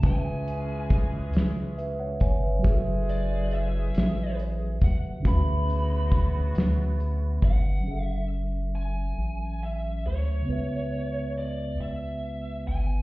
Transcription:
0.00 2.58 C#3 medium
0.00 2.17 E3 medium
0.00 2.16 G#3 medium
0.00 2.60 C#4 medium
0.00 2.16 C#4 medium
0.00 2.16 G#4 medium
0.00 kick loud
0.00 closed hi-hat medium
0.05 1.30 C#2 loud
0.05 1.32 B4 medium
0.05 0.98 G#5 medium
0.10 0.13 D#5 medium
0.16 1.38 E5 medium
0.48 closed hi-hat medium
0.90 kick loud
0.90 closed hi-hat medium
1.33 2.24 C#2 medium
1.33 snare loud
1.33 closed hi-hat medium
1.78 1.99 B4 medium
1.78 1.98 E5 medium
1.78 closed hi-hat soft
2.00 2.20 C#5 medium
2.00 2.20 F#5 medium
2.20 2.61 G1 medium
2.20 2.42 C#5 medium
2.20 2.42 G#5 medium
2.20 kick medium
2.20 closed hi-hat soft
2.43 2.84 B4 medium
2.43 2.69 E5 medium
2.59 5.19 F#3 medium
2.59 5.20 F#4 medium
2.63 3.91 F#1 loud
2.63 4.77 C#3 medium
2.63 4.77 E3 medium
2.63 4.77 G#3 medium
2.63 4.77 G#4 medium
2.63 2.72 G#4 medium
2.63 kick loud
2.63 closed hi-hat medium
2.70 5.25 A4 medium
2.70 5.24 E5 medium
3.09 3.53 D5 loud
3.09 closed hi-hat medium
3.51 4.35 E5 loud
3.51 closed hi-hat medium
3.95 4.79 A1 loud
3.95 snare loud
3.95 closed hi-hat medium
4.39 closed hi-hat soft
4.81 5.22 D#2 medium
4.81 4.96 F#5 medium
4.81 kick medium
4.81 closed hi-hat soft
5.20 7.79 D3 medium
5.20 7.81 C#4 medium
5.24 6.52 D2 loud
5.24 7.38 C#3 medium
5.24 7.38 F#3 medium
5.24 7.38 B3 medium
5.24 7.38 F#4 medium
5.24 7.82 F#4 medium
5.24 7.83 B4 medium
5.24 7.40 B5 medium
5.24 kick loud
5.24 closed hi-hat medium
5.31 7.85 E5 medium
5.70 closed hi-hat medium
6.12 kick loud
6.12 closed hi-hat medium
6.55 7.39 D2 loud
6.55 snare loud
6.55 closed hi-hat medium
7.00 closed hi-hat soft
7.42 7.83 G1 loud
7.42 8.04 F#5 medium
7.42 kick medium
7.42 closed hi-hat soft
7.80 10.40 F#3 medium
7.80 10.42 C#4 soft
7.87 9.13 F#1 medium
7.87 7.93 G#4 soft
7.91 10.47 A4 medium
7.91 10.45 E5 medium
8.04 8.27 E5 medium
8.75 9.64 G#5 loud
9.18 10.06 A1 medium
9.63 10.06 E5 medium
10.05 10.44 D2 medium
10.05 11.32 C#5 medium
10.42 13.01 C#3 medium
10.42 13.02 B3 medium
10.49 11.74 C#2 medium
10.49 13.02 B4 soft
10.49 13.02 E5 medium
11.38 11.76 D5 medium
11.80 12.68 C#2 medium
11.80 12.62 E5 medium
12.67 13.02 G1 medium
12.67 13.02 G#5 medium

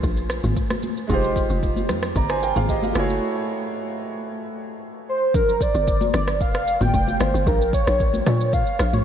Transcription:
0.00 0.41 A#1 medium
0.00 1.04 A#3 medium
0.00 1.05 C#4 medium
0.00 1.06 F4 medium
0.00 1.07 G#4 medium
0.00 1.08 C5 medium
0.00 kick loud
0.00 shaker medium
0.17 shaker soft
0.30 cross-stick medium
0.30 shaker loud
0.44 0.56 G#1 medium
0.44 mid tom medium
0.44 high conga medium
0.44 shaker medium
0.56 kick loud
0.56 shaker medium
0.70 cross-stick medium
0.70 high conga medium
0.70 shaker soft
0.83 high conga medium
0.83 shaker medium
0.97 shaker medium
1.07 1.47 F1 loud
1.07 2.91 G#3 medium
1.07 2.91 D#4 medium
1.07 2.92 F4 medium
1.07 kick loud
1.07 low conga medium
1.07 shaker medium
1.12 2.15 G4 medium
1.12 2.16 C5 medium
1.24 shaker medium
1.36 kick medium
1.36 shaker medium
1.50 1.91 F1 loud
1.50 shaker medium
1.63 kick medium
1.63 shaker medium
1.76 high conga medium
1.76 shaker medium
1.89 2.14 F2 loud
1.89 cross-stick medium
1.89 low conga medium
1.89 shaker medium
2.03 cross-stick medium
2.03 shaker soft
2.16 2.53 G1 loud
2.16 2.30 D5 medium
2.16 2.29 A#5 medium
2.16 kick loud
2.16 shaker medium
2.29 2.42 C5 medium
2.29 2.42 G#5 medium
2.29 cross-stick medium
2.29 shaker medium
2.43 2.56 A#4 medium
2.43 2.56 G5 medium
2.43 shaker medium
2.56 2.93 G#1 medium
2.56 2.69 G#4 medium
2.56 2.69 F5 medium
2.56 mid tom medium
2.56 high conga medium
2.56 shaker medium
2.69 2.83 G4 medium
2.69 2.82 D#5 medium
2.69 kick medium
2.69 shaker medium
2.83 2.96 G#4 medium
2.83 3.08 F5 medium
2.83 high conga medium
2.83 shaker soft
2.93 3.20 F#1 loud
2.93 5.03 A3 medium
2.93 5.04 E4 medium
2.93 5.04 F#4 medium
2.93 cross-stick loud
2.93 high conga medium
2.93 shaker medium
2.98 5.05 G#4 medium
2.98 5.06 C#5 medium
3.10 shaker medium
5.09 5.33 C5 loud
5.34 5.63 A#4 loud
5.34 kick loud
5.34 low conga medium
5.34 shaker medium
5.49 shaker medium
5.61 6.15 D5 loud
5.61 kick medium
5.61 shaker loud
5.74 6.11 G1 loud
5.74 shaker medium
5.88 kick loud
5.88 shaker medium
6.01 high conga medium
6.01 shaker medium
6.14 6.42 G1 loud
6.14 6.39 D5 loud
6.14 cross-stick medium
6.14 low conga medium
6.14 shaker medium
6.28 cross-stick loud
6.28 shaker medium
6.41 6.78 F1 loud
6.41 6.83 F5 loud
6.41 kick loud
6.41 shaker medium
6.54 cross-stick medium
6.54 shaker medium
6.68 shaker medium
6.81 6.93 G1 medium
6.81 6.94 G5 loud
6.81 mid tom medium
6.81 high conga medium
6.81 shaker medium
6.94 7.18 F1 medium
6.94 7.23 G5 loud
6.94 kick medium
6.94 shaker medium
7.08 high conga medium
7.08 shaker soft
7.20 7.33 G1 loud
7.20 7.49 C5 loud
7.20 cross-stick loud
7.20 high conga medium
7.20 shaker medium
7.34 7.46 G1 loud
7.34 shaker medium
7.47 7.84 A#1 loud
7.47 7.73 A#4 loud
7.47 kick loud
7.47 low conga medium
7.47 shaker medium
7.62 shaker medium
7.73 8.23 C#5 loud
7.73 kick medium
7.73 shaker loud
7.87 8.24 A#1 loud
7.87 cross-stick medium
7.87 shaker medium
8.00 kick medium
8.00 shaker medium
8.14 high conga medium
8.14 shaker medium
8.26 8.64 A#2 loud
8.26 8.55 C#5 loud
8.26 cross-stick medium
8.26 low conga medium
8.26 shaker loud
8.41 shaker medium
8.53 8.93 F5 loud
8.53 kick loud
8.53 shaker medium
8.67 shaker medium
8.79 9.04 A#1 medium
8.79 cross-stick loud
8.79 shaker loud
8.93 9.04 C#5 medium
8.93 mid tom medium
8.93 high conga medium
8.93 shaker medium

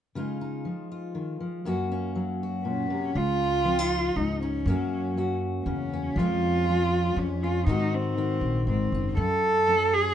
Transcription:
0.15 0.65 C#3 medium
0.15 1.66 G#3 soft
0.15 0.40 D#4 soft
0.15 0.90 F4 soft
0.41 1.63 D#4 soft
0.65 1.14 F3 soft
0.92 1.66 F4 soft
1.15 1.40 D#3 soft
1.40 1.66 F3 soft
1.65 3.13 F#2 medium
1.65 3.13 A#3 medium
1.65 1.90 C#4 soft
1.65 2.42 F#4 medium
1.92 3.14 C#4 soft
2.15 3.13 F#3 soft
2.43 3.14 F#4 soft
2.64 2.90 A#2 soft
2.64 3.18 C#4 medium
2.90 3.15 C3 medium
3.15 4.12 C#2 medium
3.15 3.66 C#3 medium
3.15 4.18 F4 medium
3.65 4.63 F3 medium
3.65 3.79 C4 soft
3.79 4.41 D#4 soft
4.16 4.64 C#2 medium
4.16 4.64 G#2 medium
4.16 4.40 D#4 medium
4.40 5.37 C#4 medium
4.40 4.64 D#4 soft
4.66 5.62 F#2 medium
4.66 6.14 F#2 medium
4.66 5.16 F#3 medium
4.66 6.15 A#3 soft
4.66 5.92 C#4 soft
4.70 5.17 F#4 medium
5.17 6.14 F#3 soft
5.17 6.15 F#4 medium
5.65 6.14 E2 medium
5.65 6.14 C#3 medium
5.65 6.19 C#4 medium
5.93 6.15 C#4 medium
6.16 7.13 F2 medium
6.16 7.17 F2 medium
6.16 6.68 F3 medium
6.16 7.20 F4 medium
6.20 7.68 G#3 medium
6.20 6.68 C#4 medium
6.69 7.65 F3 medium
6.69 7.43 C#4 soft
7.16 7.64 F2 medium
7.16 7.67 F2 medium
7.16 7.45 C#4 medium
7.43 7.65 C#4 medium
7.43 7.67 F4 medium
7.66 8.38 G#2 medium
7.66 8.67 G#2 medium
7.66 8.16 D#3 medium
7.66 9.15 C4 medium
7.66 7.95 D#4 medium
7.66 8.93 D#4 medium
7.66 8.18 F#4 medium
7.94 8.68 C4 medium
8.17 9.18 D#3 soft
8.17 9.15 F#4 medium
8.41 8.64 A#1 medium
8.67 8.90 G#1 medium
8.67 9.15 G#2 medium
8.67 9.15 C4 medium
8.92 9.15 F#1 medium
8.92 9.16 D#4 soft
9.17 10.14 F#2 medium
9.17 9.95 A4 medium
9.68 10.14 F#3 soft
9.68 10.14 C#4 soft
9.94 10.14 G#4 medium

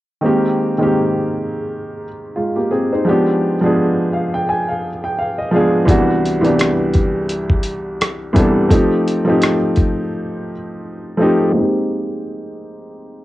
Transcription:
0.21 0.72 D#3 medium
0.21 0.73 G#3 medium
0.21 0.74 A#3 medium
0.21 0.74 C4 medium
0.26 0.75 G4 medium
0.78 2.04 D#3 medium
0.78 2.04 G#3 medium
0.78 2.05 A#3 medium
0.78 2.06 C4 medium
0.83 2.06 G4 medium
2.36 2.55 G#3 soft
2.36 2.55 F4 medium
2.56 2.70 A#3 soft
2.56 2.70 G4 medium
2.71 2.90 C4 medium
2.71 2.90 G#4 medium
2.93 3.25 D#4 soft
2.93 3.25 C5 medium
3.05 3.55 F3 medium
3.05 3.56 G#3 medium
3.05 3.56 B3 medium
3.05 3.57 D4 medium
3.09 3.57 G4 medium
3.61 4.87 F3 medium
3.61 4.87 G#3 medium
3.61 4.88 B3 medium
3.61 4.88 D4 medium
3.65 4.89 G#4 medium
4.13 4.31 F5 medium
4.34 4.47 G5 medium
4.49 4.67 G#5 medium
4.69 5.01 F5 medium
5.04 5.17 G5 medium
5.19 5.37 F5 medium
5.38 5.52 D#5 medium
5.51 5.85 F3 medium
5.51 5.85 G#3 medium
5.51 5.86 B3 medium
5.51 5.86 D4 medium
5.51 5.86 F5 medium
5.56 5.87 G#4 medium
5.86 6.37 C2 medium
5.86 6.37 E3 medium
5.86 6.38 G3 medium
5.86 6.38 B3 medium
5.86 6.39 D4 medium
5.86 kick loud
5.86 closed hi-hat medium
5.91 6.39 F#4 medium
6.26 closed hi-hat medium
6.41 7.68 C2 medium
6.41 7.68 E3 medium
6.41 7.69 G3 medium
6.41 7.70 B3 medium
6.41 closed hi-hat soft
6.45 7.70 D4 medium
6.45 7.70 G4 medium
6.59 cross-stick loud
6.59 closed hi-hat medium
6.94 kick medium
6.94 closed hi-hat soft
7.29 closed hi-hat medium
7.50 kick medium
7.63 closed hi-hat medium
8.01 cross-stick loud
8.01 closed hi-hat medium
8.33 8.67 C2 medium
8.33 8.67 E3 medium
8.33 8.67 G3 medium
8.33 8.68 B3 medium
8.33 kick medium
8.33 closed hi-hat medium
8.37 8.69 D4 medium
8.37 8.69 A4 medium
8.69 9.20 F3 medium
8.69 9.20 A3 medium
8.69 9.21 C4 medium
8.69 9.21 D#4 medium
8.69 kick loud
8.69 closed hi-hat medium
8.73 9.22 G4 medium
9.08 closed hi-hat medium
9.24 10.51 F3 medium
9.24 10.52 A3 medium
9.24 10.52 C4 medium
9.24 10.53 D#4 medium
9.29 10.53 G4 medium
9.42 cross-stick loud
9.42 closed hi-hat medium
9.76 kick medium
9.76 closed hi-hat soft
11.17 11.50 F3 medium
11.17 11.50 A3 medium
11.17 11.51 C4 medium
11.17 11.51 D#4 medium
11.22 11.52 G4 medium
11.50 13.25 G#3 medium
11.50 13.25 A#3 medium
11.54 13.25 C4 medium
11.54 13.25 D#4 medium
11.59 13.25 G4 medium

